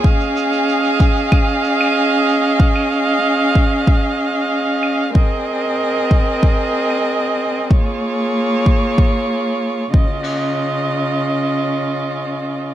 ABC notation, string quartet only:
X:1
M:4/4
L:1/8
Q:1/4=94
K:Db
V:1 name="String quartet"
[DAef]8- | [DAef]8 | [CABe]8 | [B,FAd]6- [B,FAd] [D,DFe]- |
[D,DFe]8 |]